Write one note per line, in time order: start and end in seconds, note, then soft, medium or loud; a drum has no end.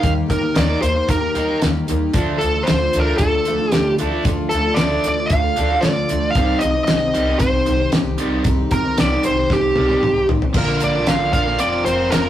0.00 0.29 D#3 medium
0.00 0.25 G3 medium
0.00 0.27 A#3 medium
0.00 0.27 D#4 medium
0.00 0.29 G4 medium
0.00 0.12 F5 medium
0.00 kick medium
0.00 closed hi-hat medium
0.04 0.20 D#2 medium
0.04 0.28 D#3 medium
0.04 0.28 A#3 medium
0.26 0.53 D#3 medium
0.26 0.41 G3 medium
0.26 0.42 A#3 medium
0.26 0.54 A#3 medium
0.26 0.41 D#4 medium
0.26 0.39 G4 medium
0.26 kick medium
0.26 closed hi-hat medium
0.31 0.47 D#2 medium
0.31 0.58 A#4 medium
0.41 0.53 A#3 soft
0.41 0.53 D#4 soft
0.41 0.54 G4 soft
0.52 0.68 D#3 medium
0.52 0.80 D#3 medium
0.52 0.68 G3 medium
0.52 0.69 A#3 medium
0.52 0.81 A#3 medium
0.52 0.67 D#4 medium
0.52 0.65 G4 medium
0.52 closed hi-hat medium
0.56 0.73 D#2 medium
0.56 0.81 D#4 medium
0.56 0.82 D5 medium
0.56 snare loud
0.66 0.94 D#4 soft
0.66 0.92 G4 soft
0.70 0.96 A#3 soft
0.82 0.99 D#2 medium
0.82 1.07 D#3 medium
0.82 1.07 A#3 medium
0.82 1.10 C5 medium
0.82 closed hi-hat medium
0.93 1.20 A#3 soft
0.93 1.18 D#4 soft
0.93 1.16 G4 soft
1.08 1.26 D#2 medium
1.08 1.32 D#3 medium
1.08 1.33 A#3 medium
1.08 1.59 A#4 medium
1.08 kick medium
1.08 closed hi-hat medium
1.17 1.34 D#4 soft
1.17 1.33 G4 medium
1.22 1.34 A#3 soft
1.33 1.51 D#2 medium
1.33 1.60 D#3 medium
1.33 1.48 G3 medium
1.33 1.49 A#3 medium
1.33 1.60 A#3 medium
1.33 1.49 D#4 medium
1.33 1.61 D#4 medium
1.33 1.47 G4 medium
1.33 closed hi-hat soft
1.48 1.61 A#3 soft
1.48 1.62 D#4 soft
1.48 1.62 G4 soft
1.60 1.79 D#2 medium
1.60 1.87 D#3 medium
1.60 1.86 D#3 medium
1.60 1.86 G3 medium
1.60 1.86 A#3 medium
1.60 1.87 D#4 medium
1.60 1.89 G4 medium
1.60 snare medium
1.60 closed hi-hat medium
1.87 2.06 D#2 medium
1.87 2.12 D#3 medium
1.87 2.14 G3 medium
1.87 2.14 A#3 medium
1.87 2.13 A#3 medium
1.87 2.15 D#4 medium
1.87 2.15 G4 medium
1.87 closed hi-hat medium
2.13 2.31 D2 medium
2.13 2.39 D3 medium
2.13 2.41 D3 medium
2.13 2.38 F3 medium
2.13 2.39 A3 medium
2.13 2.40 D4 medium
2.13 2.39 D4 medium
2.13 2.41 F4 medium
2.13 2.42 A4 medium
2.13 kick loud
2.13 closed hi-hat medium
2.38 2.65 D3 medium
2.38 2.53 F3 medium
2.38 2.65 A3 medium
2.38 2.54 D4 medium
2.38 2.55 F4 medium
2.38 2.67 A4 medium
2.38 closed hi-hat medium
2.43 2.58 D2 medium
2.43 2.53 A4 medium
2.54 2.67 D4 soft
2.54 2.67 F4 soft
2.54 2.66 A4 soft
2.63 2.80 D3 medium
2.63 2.91 D3 medium
2.63 2.80 F3 medium
2.63 3.02 C5 medium
2.63 closed hi-hat medium
2.68 2.85 D2 medium
2.68 2.91 A3 medium
2.68 2.81 D4 medium
2.68 2.80 F4 medium
2.68 2.78 A4 medium
2.68 snare loud
2.80 3.08 D4 soft
2.80 3.07 F4 soft
2.80 3.05 A4 medium
2.93 3.11 D2 medium
2.93 3.19 D3 medium
2.93 3.19 A3 medium
2.93 3.20 D4 medium
2.93 closed hi-hat medium
3.00 3.17 A#4 medium
3.06 3.34 D4 soft
3.06 3.33 F4 soft
3.06 3.31 A4 medium
3.18 3.36 D2 medium
3.18 3.74 A4 medium
3.18 kick medium
3.18 closed hi-hat medium
3.22 3.45 D3 medium
3.22 3.45 A3 medium
3.32 3.46 D4 soft
3.32 3.46 F4 soft
3.32 3.46 A4 soft
3.45 3.71 D3 medium
3.45 3.59 F3 medium
3.45 3.71 A3 medium
3.45 3.60 D4 medium
3.45 3.58 F4 medium
3.45 3.57 A4 medium
3.45 closed hi-hat medium
3.50 3.65 D2 medium
3.58 3.71 D4 soft
3.58 3.72 F4 soft
3.58 3.72 A4 medium
3.71 3.98 D3 medium
3.71 3.97 D3 medium
3.71 3.95 F3 medium
3.71 3.97 A3 medium
3.71 3.96 D4 medium
3.71 3.97 F4 medium
3.71 3.94 G4 medium
3.71 3.99 A4 medium
3.71 snare medium
3.71 closed hi-hat medium
3.75 3.91 D2 medium
3.96 4.24 D3 medium
3.96 4.11 F3 medium
3.96 4.12 D4 medium
3.96 4.10 F4 medium
3.96 closed hi-hat medium
4.01 4.17 D2 medium
4.01 4.25 A3 medium
4.01 4.25 D4 medium
4.01 4.09 A4 medium
4.10 4.23 D4 soft
4.10 4.23 F4 soft
4.10 4.24 A4 soft
4.23 4.42 D2 medium
4.23 4.50 D3 medium
4.23 4.51 F3 medium
4.23 4.51 D4 medium
4.23 4.51 F4 medium
4.23 4.52 A4 medium
4.23 kick loud
4.23 closed hi-hat medium
4.28 4.51 D3 medium
4.28 4.51 A3 medium
4.49 4.69 D2 medium
4.49 4.65 F3 medium
4.49 4.65 D4 medium
4.49 4.78 A4 medium
4.49 closed hi-hat medium
4.54 4.77 D3 medium
4.54 4.77 A3 medium
4.54 4.64 F4 medium
4.64 4.76 D4 soft
4.64 4.76 F4 soft
4.64 4.78 A4 soft
4.74 4.90 D3 medium
4.74 4.90 F3 medium
4.74 4.91 D4 medium
4.74 4.91 F4 medium
4.74 5.07 D5 medium
4.74 snare loud
4.74 closed hi-hat medium
4.78 4.95 D2 medium
4.78 5.04 D3 medium
4.78 5.04 A3 medium
4.78 5.05 D4 medium
4.78 4.90 A4 medium
4.91 5.19 D4 soft
4.91 5.18 F4 soft
4.91 5.17 A4 medium
5.04 5.22 D2 medium
5.04 5.29 D3 medium
5.04 5.29 A3 medium
5.04 closed hi-hat medium
5.08 5.29 D5 medium
5.19 5.46 D4 soft
5.19 5.44 F4 soft
5.19 5.42 A4 medium
5.26 5.83 F5 loud
5.26 closed hi-hat medium
5.30 5.47 D2 medium
5.30 5.54 D3 medium
5.30 5.55 A3 medium
5.30 kick medium
5.44 5.58 F4 soft
5.44 5.57 A4 medium
5.48 5.58 D4 soft
5.56 5.74 D2 medium
5.56 5.81 D3 medium
5.56 5.71 F3 medium
5.56 5.82 A3 medium
5.56 5.82 D4 medium
5.56 5.71 D4 medium
5.56 5.72 F4 medium
5.56 closed hi-hat medium
5.61 5.70 A4 medium
5.71 5.83 D4 soft
5.71 5.83 F4 soft
5.71 5.84 A4 soft
5.81 6.07 D3 medium
5.81 6.10 D3 medium
5.81 6.08 F3 medium
5.81 6.07 A3 medium
5.81 6.09 D4 medium
5.81 6.10 F4 medium
5.81 6.31 D5 medium
5.81 snare medium
5.81 closed hi-hat medium
5.86 6.10 A4 medium
6.09 6.27 D2 medium
6.09 6.33 D3 medium
6.09 6.35 F3 medium
6.09 6.34 A3 medium
6.09 6.36 D4 soft
6.09 6.37 F4 medium
6.09 6.37 A4 medium
6.09 closed hi-hat medium
6.30 6.60 F5 loud
6.35 6.52 C2 medium
6.35 6.60 C3 medium
6.35 6.62 C3 medium
6.35 6.61 D#3 medium
6.35 6.59 G3 medium
6.35 6.61 G3 medium
6.35 6.60 C4 medium
6.35 6.62 D#4 medium
6.35 6.63 G4 medium
6.35 kick loud
6.35 closed hi-hat medium
6.59 6.79 C2 medium
6.59 6.86 C3 medium
6.59 6.86 D#3 medium
6.59 6.74 G3 medium
6.59 6.75 C4 soft
6.59 6.83 D#5 medium
6.59 closed hi-hat medium
6.63 6.75 D#4 medium
6.63 6.72 G4 medium
6.73 6.85 C4 soft
6.73 6.86 D#4 soft
6.73 6.87 G4 soft
6.84 7.00 C3 medium
6.84 7.00 G3 medium
6.84 7.01 C4 medium
6.84 7.00 D#4 medium
6.84 6.99 G4 medium
6.84 7.39 D#5 medium
6.84 snare loud
6.84 closed hi-hat medium
6.89 7.05 C2 medium
6.89 7.12 C3 medium
6.89 7.13 D#3 medium
7.00 7.27 D#4 soft
7.00 7.24 G4 soft
7.04 7.28 C4 soft
7.14 7.31 C2 medium
7.14 7.38 C3 medium
7.14 7.39 D#3 medium
7.14 7.40 G3 medium
7.14 closed hi-hat medium
7.26 7.55 C4 soft
7.26 7.53 D#4 soft
7.26 7.51 G4 soft
7.39 7.57 C2 medium
7.39 7.64 C3 medium
7.39 7.64 D#3 medium
7.39 7.89 C5 medium
7.39 kick medium
7.39 closed hi-hat medium
7.52 7.66 C4 soft
7.52 7.66 D#4 soft
7.52 7.66 G4 medium
7.65 7.84 C2 medium
7.65 7.90 C3 medium
7.65 7.90 D#3 medium
7.65 7.79 G3 medium
7.65 7.79 C4 medium
7.65 7.77 D#4 medium
7.65 7.76 G4 medium
7.65 closed hi-hat soft
7.77 7.91 C4 soft
7.77 7.91 D#4 soft
7.77 7.91 G4 soft
7.90 8.18 C3 medium
7.90 8.16 C3 medium
7.90 8.17 D#3 medium
7.90 8.16 G3 medium
7.90 8.18 C4 medium
7.90 8.19 D#4 medium
7.90 8.19 G4 medium
7.90 snare loud
7.90 closed hi-hat medium
7.95 8.10 C2 medium
8.17 8.37 C2 medium
8.17 8.43 C3 medium
8.17 8.44 D#3 medium
8.17 8.31 G3 medium
8.17 8.44 G3 medium
8.17 8.33 C4 medium
8.17 8.31 D#4 medium
8.17 8.30 G4 medium
8.17 closed hi-hat medium
8.31 8.44 C4 soft
8.31 8.44 D#4 soft
8.31 8.45 G4 soft
8.44 8.61 C2 medium
8.44 8.71 C3 medium
8.44 8.69 C3 medium
8.44 8.69 D#3 medium
8.44 8.69 G3 medium
8.44 8.70 C4 medium
8.44 8.71 D#4 medium
8.44 8.72 G4 medium
8.44 kick loud
8.44 closed hi-hat medium
8.70 8.88 C2 medium
8.70 8.96 C3 medium
8.70 8.96 D#3 medium
8.70 8.84 G3 medium
8.70 8.85 C4 medium
8.70 8.83 D#4 medium
8.70 8.82 G4 medium
8.70 8.96 A#4 medium
8.70 kick medium
8.70 closed hi-hat medium
8.83 8.98 C4 soft
8.83 8.98 D#4 soft
8.83 8.97 G4 soft
8.97 9.15 C2 medium
8.97 9.11 C3 medium
8.97 9.22 C3 medium
8.97 9.23 D#3 medium
8.97 9.11 G3 medium
8.97 9.23 G3 medium
8.97 9.12 C4 medium
8.97 9.12 D#4 medium
8.97 9.10 G4 medium
8.97 9.25 D5 medium
8.97 snare loud
8.97 closed hi-hat medium
9.11 9.38 C4 soft
9.11 9.37 D#4 soft
9.11 9.35 G4 medium
9.23 9.41 C2 medium
9.23 9.49 C3 medium
9.23 9.49 D#3 medium
9.23 9.52 C5 medium
9.23 closed hi-hat medium
9.36 9.64 C4 soft
9.36 9.62 D#4 soft
9.36 9.60 G4 soft
9.50 9.67 C2 medium
9.50 9.75 C3 medium
9.50 9.75 D#3 medium
9.50 10.26 G4 medium
9.50 kick medium
9.50 snare medium
9.61 9.74 C4 soft
9.61 9.75 D#4 soft
9.61 9.76 G4 soft
9.74 10.01 C3 medium
9.74 10.02 D#3 medium
9.74 9.88 G3 medium
9.74 9.89 C4 medium
9.74 9.89 D#4 medium
9.74 high tom medium
9.78 9.94 C2 medium
9.78 10.02 G3 medium
9.88 10.00 C4 soft
9.88 10.00 D#4 soft
9.88 10.02 G4 medium
9.88 high tom soft
10.00 10.28 C3 medium
10.00 10.27 C3 medium
10.00 10.27 D#3 medium
10.00 10.26 G3 medium
10.00 10.27 C4 medium
10.00 10.29 D#4 medium
10.00 10.29 G4 medium
10.00 mid tom medium
10.04 10.20 C2 medium
10.27 10.46 A1 medium
10.27 10.52 C3 medium
10.27 10.53 D#3 medium
10.27 10.41 G3 medium
10.27 10.42 C4 medium
10.27 10.42 D#4 medium
10.27 10.40 G4 medium
10.27 floor tom medium
10.41 10.56 C4 soft
10.41 10.56 D#4 soft
10.41 10.55 G4 soft
10.41 floor tom medium
10.53 10.76 A#1 medium
10.53 11.31 A#2 medium
10.53 10.94 A#2 medium
10.53 11.32 D3 medium
10.53 10.95 D3 medium
10.53 10.95 F3 medium
10.53 11.33 A#3 medium
10.53 10.95 A#3 medium
10.53 11.33 D4 medium
10.53 11.31 F4 medium
10.53 10.80 A#4 medium
10.53 kick loud
10.53 crash medium
10.57 10.94 D4 medium
10.57 10.93 A#4 medium
10.80 11.04 A#1 medium
10.80 11.10 D5 medium
10.80 closed hi-hat medium
10.95 11.07 F3 soft
10.95 11.07 A#3 soft
10.95 11.08 D4 soft
10.95 11.08 A#4 soft
11.06 11.30 A#1 medium
11.06 11.34 A#2 medium
11.06 11.35 D3 medium
11.06 11.30 F3 medium
11.06 11.32 A#3 medium
11.06 11.33 D4 medium
11.06 11.32 F5 medium
11.06 snare loud
11.06 closed hi-hat medium
11.11 11.34 A#4 medium
11.31 11.55 A#1 medium
11.31 11.59 D3 medium
11.31 11.46 F3 medium
11.31 11.46 A#3 medium
11.31 11.60 A#3 medium
11.31 11.58 D4 medium
11.31 11.45 D4 medium
11.31 11.58 F4 medium
11.31 11.44 A#4 medium
11.31 11.58 F5 medium
11.31 kick medium
11.31 closed hi-hat medium
11.36 11.58 A#2 medium
11.45 11.58 F3 soft
11.45 11.59 A#3 soft
11.45 11.60 D4 soft
11.45 11.59 A#4 soft
11.58 11.82 F1 medium
11.58 12.29 F2 medium
11.58 12.29 C3 medium
11.58 12.29 F3 medium
11.58 11.83 F3 medium
11.58 12.29 A#3 medium
11.58 11.84 C4 medium
11.58 12.29 C4 loud
11.58 11.84 F4 medium
11.58 12.29 F4 medium
11.58 11.85 D5 medium
11.58 closed hi-hat medium
11.62 11.87 A#4 medium
11.84 12.08 F1 medium
11.84 12.10 F3 medium
11.84 12.12 C4 medium
11.84 12.11 F4 medium
11.84 12.13 C5 medium
11.84 closed hi-hat medium
11.88 12.12 A#4 medium
12.10 12.29 F1 medium
12.10 12.29 F3 medium
12.10 12.29 C4 medium
12.10 12.29 F4 medium
12.10 12.29 A#4 medium
12.10 snare loud
12.10 closed hi-hat medium